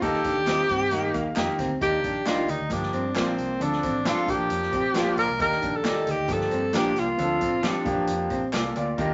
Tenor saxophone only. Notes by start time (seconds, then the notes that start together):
0.03 G4
1.82 G4
2.27 F4
2.50 D#4
2.72 D4
3.17 C4
3.62 D4
4.07 F4
4.30 G4
5.18 A#4
5.42 A#4
5.68 A#4
5.76 A4
6.10 G4
6.32 A4
6.77 G4
6.99 F4